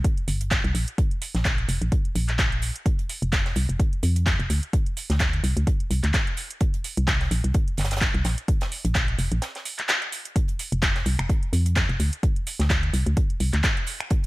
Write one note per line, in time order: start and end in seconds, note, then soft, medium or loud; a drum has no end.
0.04 kick loud
0.04 closed hi-hat medium
0.17 closed hi-hat soft
0.28 0.60 G1 medium
0.28 closed hi-hat medium
0.28 open hi-hat loud
0.41 closed hi-hat soft
0.51 kick loud
0.51 snare loud
0.51 clap loud
0.51 closed hi-hat medium
0.51 closed hi-hat soft
0.64 0.73 C2 medium
0.64 closed hi-hat soft
0.75 0.85 A#1 medium
0.75 closed hi-hat medium
0.75 open hi-hat loud
0.88 closed hi-hat soft
0.98 kick loud
0.98 closed hi-hat medium
1.11 closed hi-hat soft
1.22 closed hi-hat medium
1.22 open hi-hat loud
1.35 1.65 A#1 medium
1.35 snare soft
1.35 closed hi-hat medium
1.45 kick loud
1.45 snare loud
1.45 clap loud
1.45 closed hi-hat medium
1.45 closed hi-hat soft
1.58 closed hi-hat soft
1.69 1.79 F1 loud
1.69 closed hi-hat medium
1.69 open hi-hat loud
1.82 1.90 A#1 medium
1.82 closed hi-hat soft
1.92 kick loud
1.92 closed hi-hat soft
1.92 closed hi-hat medium
2.05 closed hi-hat soft
2.15 2.71 A#1 medium
2.15 closed hi-hat medium
2.15 open hi-hat loud
2.29 clap soft
2.29 closed hi-hat soft
2.38 kick loud
2.38 snare loud
2.38 clap loud
2.38 closed hi-hat medium
2.52 closed hi-hat soft
2.62 closed hi-hat medium
2.62 open hi-hat loud
2.76 closed hi-hat soft
2.86 kick loud
2.86 closed hi-hat medium
2.86 closed hi-hat soft
2.99 closed hi-hat soft
3.09 closed hi-hat medium
3.09 open hi-hat loud
3.22 3.53 F1 loud
3.22 closed hi-hat medium
3.33 kick loud
3.33 snare loud
3.33 clap loud
3.33 closed hi-hat soft
3.33 closed hi-hat medium
3.46 snare medium
3.46 closed hi-hat soft
3.56 3.67 C2 loud
3.56 closed hi-hat medium
3.56 open hi-hat loud
3.69 3.78 F1 medium
3.69 closed hi-hat medium
3.80 kick loud
3.80 closed hi-hat medium
3.80 closed hi-hat soft
3.93 closed hi-hat soft
4.03 4.35 F2 medium
4.03 closed hi-hat medium
4.03 open hi-hat loud
4.16 closed hi-hat soft
4.26 kick loud
4.26 snare loud
4.26 clap loud
4.26 closed hi-hat medium
4.26 closed hi-hat soft
4.40 4.48 F1 medium
4.40 closed hi-hat soft
4.50 4.60 D2 medium
4.50 closed hi-hat medium
4.50 open hi-hat loud
4.63 closed hi-hat soft
4.73 kick loud
4.73 closed hi-hat medium
4.86 closed hi-hat soft
4.97 closed hi-hat medium
4.97 open hi-hat loud
5.10 5.40 D2 loud
5.10 snare medium
5.10 closed hi-hat medium
5.20 kick loud
5.20 snare loud
5.20 clap loud
5.20 closed hi-hat medium
5.33 closed hi-hat soft
5.44 5.54 C2 loud
5.44 closed hi-hat medium
5.44 open hi-hat loud
5.57 5.65 D2 medium
5.57 closed hi-hat medium
5.67 kick loud
5.67 closed hi-hat medium
5.80 closed hi-hat soft
5.91 6.01 C2 medium
5.91 closed hi-hat medium
5.91 open hi-hat loud
6.04 6.12 D2 medium
6.04 clap soft
6.04 closed hi-hat soft
6.14 kick loud
6.14 snare loud
6.14 clap loud
6.14 closed hi-hat medium
6.27 closed hi-hat soft
6.37 closed hi-hat medium
6.37 open hi-hat loud
6.51 closed hi-hat soft
6.61 kick loud
6.61 closed hi-hat medium
6.74 closed hi-hat soft
6.84 closed hi-hat medium
6.84 open hi-hat loud
6.97 7.28 C2 loud
6.97 closed hi-hat medium
7.08 kick loud
7.08 snare loud
7.08 clap loud
7.08 closed hi-hat medium
7.21 snare medium
7.21 closed hi-hat soft
7.31 7.42 A#1 loud
7.31 closed hi-hat medium
7.31 open hi-hat loud
7.44 7.53 C2 medium
7.44 closed hi-hat medium
7.54 kick loud
7.54 closed hi-hat medium
7.68 closed hi-hat soft
7.78 8.10 G1 medium
7.78 snare medium
7.78 closed hi-hat medium
7.78 open hi-hat loud
7.85 snare medium
7.85 closed hi-hat medium
7.91 snare medium
7.91 closed hi-hat medium
7.96 snare medium
7.96 closed hi-hat medium
8.01 kick loud
8.01 snare loud
8.01 clap loud
8.01 closed hi-hat medium
8.14 8.23 C2 medium
8.14 closed hi-hat soft
8.24 8.35 A#1 medium
8.24 snare loud
8.24 closed hi-hat medium
8.24 open hi-hat loud
8.38 closed hi-hat medium
8.48 kick loud
8.48 closed hi-hat medium
8.61 snare loud
8.61 closed hi-hat medium
8.61 closed hi-hat soft
8.72 open hi-hat loud
8.85 9.15 A#1 loud
8.85 closed hi-hat medium
8.95 kick loud
8.95 snare loud
8.95 clap loud
8.95 closed hi-hat medium
9.08 closed hi-hat soft
9.19 9.29 F1 loud
9.19 closed hi-hat medium
9.19 open hi-hat loud
9.32 9.40 A#1 loud
9.32 closed hi-hat medium
9.42 snare loud
9.42 closed hi-hat medium
9.55 snare soft
9.55 closed hi-hat soft
9.65 closed hi-hat medium
9.65 open hi-hat loud
9.79 clap soft
9.79 closed hi-hat medium
9.89 snare loud
9.89 clap loud
9.89 closed hi-hat medium
10.02 closed hi-hat soft
10.12 closed hi-hat medium
10.12 open hi-hat loud
10.25 closed hi-hat soft
10.25 closed hi-hat medium
10.36 kick loud
10.36 closed hi-hat medium
10.48 closed hi-hat soft
10.59 closed hi-hat medium
10.59 open hi-hat loud
10.72 11.03 F1 loud
10.72 closed hi-hat medium
10.82 kick loud
10.82 snare loud
10.82 clap loud
10.82 closed hi-hat medium
10.96 snare medium
10.96 closed hi-hat soft
11.06 11.17 C2 loud
11.06 closed hi-hat medium
11.06 open hi-hat loud
11.19 11.27 F1 medium
11.19 finger snap medium
11.19 closed hi-hat medium
11.29 kick loud
11.29 closed hi-hat medium
11.43 closed hi-hat soft
11.53 11.85 F2 medium
11.53 closed hi-hat medium
11.53 open hi-hat loud
11.66 closed hi-hat soft
11.66 closed hi-hat medium
11.76 kick loud
11.76 snare loud
11.76 clap loud
11.76 closed hi-hat medium
11.89 11.98 F1 loud
11.89 closed hi-hat soft
12.00 12.10 D2 medium
12.00 closed hi-hat medium
12.00 open hi-hat loud
12.13 closed hi-hat medium
12.23 kick loud
12.23 closed hi-hat medium
12.36 closed hi-hat soft
12.47 closed hi-hat medium
12.47 open hi-hat loud
12.60 12.90 D2 loud
12.60 snare medium
12.60 closed hi-hat medium
12.70 kick loud
12.70 snare loud
12.70 clap loud
12.70 closed hi-hat medium
12.83 closed hi-hat soft
12.94 13.04 C2 medium
12.94 closed hi-hat medium
12.94 open hi-hat loud
13.06 13.15 D2 medium
13.06 closed hi-hat medium
13.17 kick loud
13.17 closed hi-hat medium
13.30 closed hi-hat soft
13.40 13.51 C2 medium
13.40 closed hi-hat medium
13.40 open hi-hat loud
13.53 13.62 D2 medium
13.53 clap soft
13.53 closed hi-hat soft
13.64 kick loud
13.64 snare loud
13.64 clap loud
13.64 closed hi-hat medium
13.77 closed hi-hat soft
13.87 closed hi-hat medium
13.87 open hi-hat loud
14.00 finger snap medium
14.00 closed hi-hat medium
14.10 kick loud
14.10 closed hi-hat loud
14.10 closed hi-hat medium